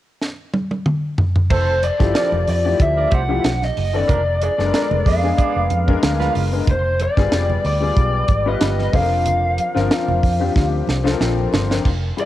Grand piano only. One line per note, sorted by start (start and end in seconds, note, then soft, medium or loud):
2.00 2.48 F3 medium
2.00 2.49 E4 medium
2.00 2.49 G4 medium
2.00 2.48 A4 medium
2.65 3.13 F3 medium
2.65 3.14 A3 medium
2.65 3.14 E4 medium
2.65 3.14 G4 medium
3.29 3.44 F3 medium
3.29 3.44 A3 medium
3.29 3.44 E4 medium
3.29 3.44 G4 medium
3.93 4.08 D#3 medium
3.93 4.09 B3 medium
3.93 4.09 C#4 medium
3.93 4.09 A4 medium
4.58 5.07 G#3 medium
4.58 5.07 B3 medium
4.58 5.07 D4 medium
4.58 4.65 A4 medium
4.65 5.11 A#4 medium
5.23 5.71 G#3 medium
5.23 5.72 B3 medium
5.23 5.72 D4 medium
5.23 5.72 G#4 medium
5.87 6.36 G#3 loud
5.87 6.36 B3 medium
5.87 6.36 D4 medium
5.87 6.37 A#4 loud
6.52 6.67 G#3 medium
6.52 6.67 B3 medium
6.52 6.67 D4 medium
6.52 6.68 A#4 medium
7.17 7.66 G3 medium
7.17 7.66 B3 medium
7.17 7.66 F4 medium
7.17 7.66 G#4 medium
7.81 8.30 G3 medium
7.81 8.30 B3 medium
7.81 8.30 F4 medium
7.81 8.30 G#4 medium
8.46 8.93 G3 medium
8.46 8.94 B3 medium
8.46 8.94 F4 medium
8.46 8.94 B4 medium
8.93 9.58 F3 medium
8.93 9.58 C4 medium
8.93 9.58 D4 medium
8.93 9.01 A4 medium
9.00 9.62 A#4 medium
9.75 10.24 F3 medium
9.75 10.24 C4 medium
9.75 10.24 D4 medium
9.75 10.25 A#4 loud
10.40 10.89 F3 medium
10.40 10.89 C4 medium
10.40 10.89 D4 medium
10.40 10.90 G4 medium
11.04 11.53 F3 loud
11.04 11.54 C4 medium
11.04 11.54 D4 medium
11.04 11.11 A4 medium
11.12 11.57 A#4 medium
11.20 11.50 G5 medium
11.52 11.83 C6 medium
11.69 11.85 F3 medium
11.69 11.85 C4 medium
11.69 11.85 D4 medium
11.69 11.85 A#4 medium
12.17 12.25 G3 medium
12.17 12.25 E4 medium
12.17 12.25 F4 medium
12.17 12.25 G#4 medium